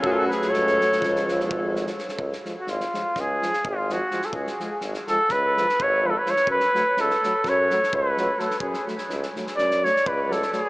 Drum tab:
SD |--oooooooooo--oooo|-oo-ooo-o-oo--o-oo|-oo-ooo-o-oo----oo|-oo-ooo-o-oo--o-oo|
BD |o-------o---o-----|o-------o---o-----|o-------o---o-----|o-------o---o-----|

SD |-ooooooooooo--ooo-|
BD |o-----------o-----|